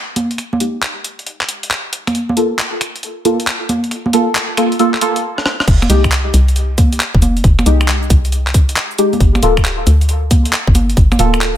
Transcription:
0.16 closed hi-hat medium
0.16 high conga medium
0.31 closed hi-hat soft
0.38 finger snap soft
0.38 closed hi-hat medium
0.53 high conga medium
0.60 2.14 G#3 loud
0.60 2.14 D#4 medium
0.60 2.14 G4 loud
0.60 closed hi-hat loud
0.82 clap loud
0.82 closed hi-hat medium
1.04 closed hi-hat medium
1.19 closed hi-hat soft
1.27 closed hi-hat medium
1.41 clap medium
1.49 closed hi-hat loud
1.63 closed hi-hat medium
1.71 clap loud
1.71 closed hi-hat medium
1.93 closed hi-hat loud
2.07 finger snap medium
2.07 closed hi-hat soft
2.07 high conga medium
2.15 closed hi-hat medium
2.29 high conga medium
2.37 2.48 A#3 medium
2.37 2.48 F4 medium
2.37 2.48 A4 medium
2.37 closed hi-hat loud
2.59 clap loud
2.59 closed hi-hat medium
2.81 finger snap medium
2.81 closed hi-hat medium
2.96 closed hi-hat soft
3.03 closed hi-hat medium
3.25 3.36 A#3 medium
3.25 3.36 F4 medium
3.25 3.36 A4 loud
3.25 closed hi-hat loud
3.25 high conga medium
3.40 closed hi-hat medium
3.47 clap loud
3.47 closed hi-hat medium
3.69 closed hi-hat medium
3.69 high conga medium
3.84 closed hi-hat soft
3.91 finger snap soft
3.91 closed hi-hat medium
4.06 high conga medium
4.13 4.24 A#3 medium
4.13 4.24 F4 medium
4.13 4.24 A4 loud
4.13 closed hi-hat loud
4.35 clap loud
4.35 closed hi-hat medium
4.57 4.69 A#3 medium
4.57 4.69 F4 medium
4.57 4.69 A4 loud
4.57 finger snap medium
4.57 closed hi-hat medium
4.72 closed hi-hat soft
4.79 4.91 A#3 loud
4.79 4.91 F4 medium
4.79 4.91 A4 loud
4.79 closed hi-hat medium
4.94 clap medium
5.01 5.13 A#3 loud
5.01 5.13 F4 medium
5.01 5.13 A4 loud
5.01 closed hi-hat loud
5.16 closed hi-hat medium
5.38 cross-stick medium
5.46 cross-stick medium
5.60 cross-stick medium
5.68 5.88 F1 loud
5.68 kick loud
5.68 closed hi-hat medium
5.68 crash loud
5.68 shaker soft
5.82 finger snap medium
5.82 high conga medium
5.82 shaker soft
5.90 6.32 C2 medium
5.90 6.01 G#3 loud
5.90 6.01 D#4 medium
5.90 6.01 G4 loud
5.90 closed hi-hat loud
5.90 shaker medium
6.04 finger snap medium
6.04 kick medium
6.04 shaker soft
6.12 clap loud
6.12 closed hi-hat medium
6.12 shaker soft
6.34 6.99 C2 loud
6.34 closed hi-hat loud
6.34 shaker medium
6.48 closed hi-hat soft
6.48 shaker soft
6.56 closed hi-hat medium
6.56 shaker soft
6.78 kick loud
6.78 closed hi-hat loud
6.78 high conga medium
6.78 shaker medium
6.93 closed hi-hat medium
6.93 shaker soft
7.00 clap loud
7.00 closed hi-hat medium
7.00 shaker soft
7.14 7.43 F1 loud
7.14 kick loud
7.22 closed hi-hat loud
7.22 high conga medium
7.22 shaker medium
7.37 closed hi-hat soft
7.37 shaker soft
7.44 7.64 F1 loud
7.44 kick loud
7.44 closed hi-hat medium
7.44 shaker soft
7.59 finger snap medium
7.59 high conga medium
7.59 shaker soft
7.66 8.09 C2 medium
7.66 8.97 G#3 loud
7.66 8.97 D#4 medium
7.66 8.97 G4 loud
7.66 closed hi-hat loud
7.66 shaker medium
7.81 finger snap medium
7.81 shaker soft
7.88 clap loud
7.88 closed hi-hat medium
7.88 shaker soft
8.03 shaker soft
8.10 8.75 C2 loud
8.10 kick loud
8.10 closed hi-hat loud
8.10 shaker medium
8.25 closed hi-hat soft
8.25 shaker soft
8.32 closed hi-hat medium
8.32 shaker soft
8.47 clap medium
8.47 shaker soft
8.54 kick loud
8.54 closed hi-hat loud
8.54 shaker medium
8.69 closed hi-hat medium
8.69 shaker soft
8.76 clap loud
8.76 closed hi-hat medium
8.76 shaker soft
8.91 shaker soft
8.98 9.15 G#3 loud
8.98 9.15 D#4 medium
8.98 9.15 G4 loud
8.98 closed hi-hat loud
8.98 shaker medium
9.13 closed hi-hat soft
9.13 high conga medium
9.13 shaker soft
9.20 9.41 G1 loud
9.20 kick loud
9.20 closed hi-hat medium
9.20 shaker soft
9.35 finger snap medium
9.35 high conga medium
9.35 shaker soft
9.43 9.85 D1 medium
9.43 9.54 A#3 loud
9.43 9.54 F4 medium
9.43 9.54 A4 loud
9.43 closed hi-hat loud
9.43 shaker medium
9.57 finger snap medium
9.57 kick medium
9.57 shaker soft
9.65 clap loud
9.65 closed hi-hat medium
9.65 shaker soft
9.87 10.51 D2 loud
9.87 closed hi-hat medium
9.87 shaker medium
10.01 closed hi-hat soft
10.01 shaker soft
10.09 closed hi-hat medium
10.09 shaker soft
10.31 kick loud
10.31 closed hi-hat loud
10.31 high conga medium
10.31 shaker medium
10.45 closed hi-hat medium
10.45 shaker soft
10.53 clap loud
10.53 closed hi-hat medium
10.53 shaker soft
10.67 10.96 G1 loud
10.67 kick loud
10.75 closed hi-hat medium
10.75 high conga medium
10.75 shaker medium
10.90 closed hi-hat soft
10.90 shaker soft
10.97 11.17 G1 loud
10.97 kick loud
10.97 closed hi-hat medium
10.97 shaker soft
11.12 finger snap medium
11.12 high conga medium
11.12 shaker soft
11.19 11.57 D1 medium
11.19 11.57 A#3 loud
11.19 11.57 F4 medium
11.19 11.57 A4 loud
11.19 closed hi-hat loud
11.19 shaker medium
11.34 finger snap medium
11.34 shaker soft
11.41 clap loud
11.41 closed hi-hat medium
11.41 shaker soft

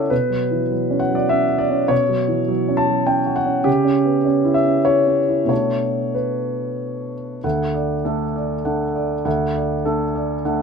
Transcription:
0.00 0.12 C#3 soft
0.00 0.13 B3 soft
0.00 0.13 C#4 soft
0.00 0.13 E4 soft
0.00 0.10 A4 soft
0.00 0.13 C#5 medium
0.00 0.13 D5 medium
0.00 0.13 E5 medium
0.00 0.12 F#5 medium
0.10 1.87 B2 soft
0.10 1.01 B4 medium
0.30 0.62 F#3 soft
0.51 0.71 E3 soft
0.71 1.03 F#3 soft
0.90 1.23 C#4 soft
0.99 1.15 F#5 medium
1.10 1.43 F#3 soft
1.15 1.30 D5 medium
1.29 1.62 C#4 soft
1.29 1.60 E5 medium
1.49 1.82 F#4 soft
1.58 1.89 D5 medium
1.70 2.02 C#4 soft
1.88 3.61 B2 medium
1.88 2.77 C#5 medium
2.09 2.41 F#3 soft
2.28 2.48 E3 soft
2.48 2.80 F#3 soft
2.68 3.00 C#4 soft
2.77 3.07 A5 medium
2.87 3.19 F#3 soft
3.07 3.39 C#4 soft
3.07 3.36 G5 medium
3.26 3.58 F#4 soft
3.36 3.66 F#5 medium
3.45 3.66 C#4 soft
3.64 5.45 C#3 medium
3.64 4.55 G4 medium
3.84 4.17 C#4 soft
4.05 4.25 B3 soft
4.25 4.58 C#4 soft
4.44 4.78 E4 soft
4.54 4.86 E5 medium
4.66 4.99 C#4 soft
4.85 5.19 E4 soft
4.85 5.47 C#5 medium
5.07 5.41 C#4 soft
5.28 5.50 E4 soft
5.45 7.37 B2 soft
5.45 7.38 A3 soft
5.45 7.39 D4 soft
5.45 7.39 F#4 soft
5.45 6.15 C#5 medium
6.14 7.12 B4 soft
7.44 8.03 D2 medium
7.44 7.93 F#5 medium
7.74 8.23 D5 soft
8.05 8.61 A3 soft
8.05 8.61 D4 soft
8.05 8.53 A4 medium
8.36 8.84 D5 soft
8.65 9.21 A3 soft
8.65 9.22 D4 soft
8.65 9.13 F#5 soft
8.95 9.43 D5 soft
9.25 9.83 D2 medium
9.25 9.73 F#5 medium
9.55 10.03 D5 soft
9.85 10.42 A3 soft
9.85 10.42 D4 soft
9.85 10.33 A4 medium
10.15 10.62 D5 soft
10.45 10.62 A3 soft
10.45 10.62 D4 soft
10.45 10.62 F#5 medium

